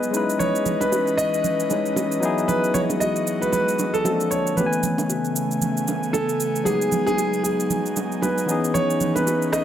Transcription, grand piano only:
0.00 0.41 B4 medium
0.39 0.78 C#5 medium
0.80 1.15 B4 medium
1.18 2.18 D#5 loud
2.48 2.75 B4 loud
2.74 2.80 C#5 medium
3.00 3.43 D#5 loud
3.42 3.51 B4 medium
3.52 3.91 B4 medium
3.94 4.28 A4 loud
4.31 4.58 C#5 medium
4.57 5.06 B4 medium
6.13 6.67 A4 medium
6.65 7.05 G#4 loud
7.07 7.42 G#4 loud
7.44 7.92 G#4 medium
8.22 8.76 B4 medium
8.74 9.13 C#5 medium
9.15 9.50 B4 medium
9.52 9.64 D#5 medium

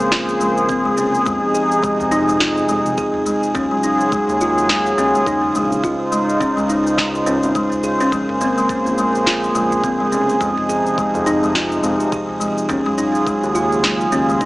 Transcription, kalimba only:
0.00 0.11 G#3 medium
0.11 0.39 F4 medium
0.40 0.50 G#3 medium
0.69 0.84 C4 loud
0.85 0.92 G#3 medium
0.97 1.07 C#4 medium
1.26 1.53 G#3 medium
1.54 1.82 G#4 medium
1.83 1.93 G#3 medium
2.11 2.27 D#4 loud
2.28 2.35 G#3 medium
2.40 2.50 F4 medium
2.69 2.96 G#3 medium
2.98 3.25 G#4 medium
3.26 3.36 G#3 medium
3.55 3.70 C#4 medium
3.71 3.78 G#3 medium
3.84 3.93 D#4 medium
4.12 4.39 G#3 medium
4.41 4.68 F4 medium
4.69 4.79 G#3 medium
4.98 5.13 C#4 medium
5.15 5.22 G#3 medium
5.27 5.36 D#4 medium
5.55 5.82 G#3 medium
5.83 6.11 F4 medium
6.12 6.22 G#3 medium
6.40 6.56 C#4 medium
6.57 6.64 G#3 medium
6.69 6.79 D#4 medium
6.97 7.13 G#3 medium
7.26 7.41 C#4 loud
7.55 7.71 G#3 medium
7.84 7.99 G#4 medium
8.00 8.12 C#4 medium
8.12 8.22 G#3 medium
8.41 8.56 C4 medium
8.58 8.64 G#3 medium
8.69 8.79 C#4 medium
8.98 9.25 G#3 medium
9.26 9.54 F4 medium
9.55 9.65 G#3 medium
9.84 9.99 C4 medium
10.00 10.07 G#3 medium
10.12 10.22 C#4 medium
10.40 10.68 G#3 medium
10.69 10.97 G#4 medium
10.98 11.07 G#3 medium
11.26 11.41 D#4 loud
11.43 11.50 G#3 medium
11.55 11.65 F4 medium
11.83 12.11 G#3 medium
12.12 12.39 G#4 medium
12.40 12.50 G#3 medium
12.69 12.84 C#4 medium
12.86 12.93 G#3 medium
12.98 13.07 D#4 medium
13.26 13.54 G#3 medium
13.55 13.82 F4 medium
13.83 13.93 G#3 medium
14.12 14.27 C#4 loud
14.29 14.36 G#3 medium
14.41 14.45 D#4 medium

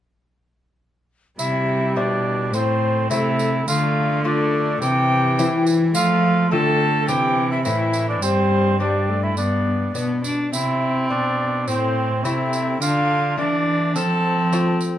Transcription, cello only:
1.39 1.98 C3 medium
1.96 2.55 B2 medium
2.53 3.12 A2 medium
3.10 3.67 C3 medium
3.68 4.79 D3 medium
4.82 5.40 C3 medium
5.39 5.96 E3 medium
5.95 6.54 F3 medium
6.52 7.10 D3 medium
7.09 7.68 C3 medium
7.66 8.22 A2 medium
8.23 9.35 G2 medium
9.37 9.94 G2 medium
9.95 10.32 B2 medium
10.53 11.12 C3 medium
11.11 11.69 B2 medium
11.67 12.26 A2 medium
12.24 12.81 C3 medium
12.81 13.39 D3 medium
13.38 13.97 E3 medium
13.95 14.98 F3 medium

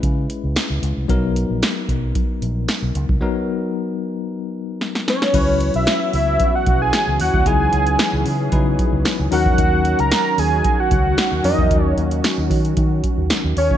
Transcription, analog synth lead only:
5.09 5.72 C#5 medium
5.76 6.11 E5 medium
6.15 6.57 E5 loud
6.55 6.81 F#5 medium
6.82 7.18 G#5 loud
7.21 7.48 F#5 loud
7.47 8.53 G#5 loud
9.33 10.01 F#5 loud
10.00 10.41 A#5 loud
10.39 10.81 G#5 loud
10.80 11.44 F#5 medium
11.45 11.94 D#5 medium
13.58 13.77 C#5 loud

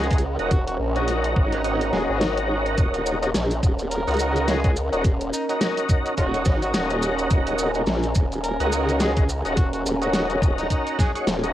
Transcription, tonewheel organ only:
0.11 0.19 C#4 medium
0.11 0.19 D#4 medium
0.11 0.19 F#4 medium
0.11 0.19 A#4 medium
0.39 0.51 C#4 medium
0.39 0.51 D#4 medium
0.39 0.51 F#4 medium
0.39 0.51 A#4 loud
0.96 1.62 C#4 medium
0.96 1.62 D#4 medium
0.96 1.62 F#4 medium
0.96 1.62 A#4 medium
1.64 3.19 C#4 medium
1.64 3.18 D#4 medium
1.64 3.18 F#4 medium
1.64 3.19 A#4 medium
3.22 3.30 C#4 medium
3.22 3.30 D#4 medium
3.22 3.30 F#4 medium
3.22 3.30 A#4 loud
4.07 4.60 C#4 loud
4.07 4.60 D#4 medium
4.07 4.60 F#4 medium
4.07 4.60 A#4 loud
4.64 4.72 C#4 medium
4.64 4.72 D#4 medium
4.64 4.72 F#4 medium
4.64 4.72 A#4 medium
4.92 5.04 C#4 medium
4.92 5.04 D#4 medium
4.92 5.04 F#4 medium
4.92 5.04 A#4 loud
5.49 6.15 C#4 medium
5.49 6.15 D#4 medium
5.49 6.15 F#4 medium
5.49 6.15 A#4 medium
6.17 7.71 C#4 medium
6.17 7.71 D#4 medium
6.17 7.71 F#4 medium
6.17 7.71 A#4 medium
7.75 7.83 C#4 medium
7.75 7.83 D#4 medium
7.75 7.83 F#4 medium
7.75 7.83 A#4 loud
8.60 9.13 C#4 medium
8.60 9.13 D#4 medium
8.60 9.13 F#4 medium
8.60 9.13 A#4 loud
9.17 9.24 C#4 medium
9.17 9.24 D#4 medium
9.17 9.24 F#4 medium
9.17 9.24 A#4 medium
9.45 9.57 C#4 medium
9.45 9.57 D#4 medium
9.45 9.57 F#4 medium
9.45 9.57 A#4 loud
10.02 10.68 C#4 medium
10.02 10.67 D#4 medium
10.02 10.67 F#4 medium
10.02 10.67 A#4 medium
10.70 11.12 C#4 medium
10.70 11.12 D#4 medium
10.70 11.12 F#4 medium
10.70 11.12 A#4 medium
11.15 11.27 C#4 medium
11.15 11.27 D#4 medium
11.15 11.27 F#4 medium
11.15 11.27 C#5 loud
11.43 11.53 C#4 medium
11.43 11.53 D#4 medium
11.43 11.53 F#4 medium
11.43 11.53 A#4 medium

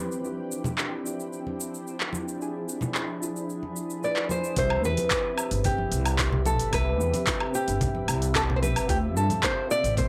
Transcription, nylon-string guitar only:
4.04 4.29 D5 medium
4.31 4.55 C5 medium
4.59 4.83 C5 medium
4.85 5.68 B4 loud
5.65 6.46 G4 medium
6.46 6.74 A4 medium
6.74 7.57 B4 loud
7.55 8.31 G4 medium
8.36 8.41 A4 loud
8.56 8.62 C5 medium
8.62 8.87 B4 medium
8.90 8.97 G4 loud
9.17 9.41 A4 loud
9.44 9.69 C5 loud
9.71 9.98 D5 loud
9.98 10.08 C5 loud

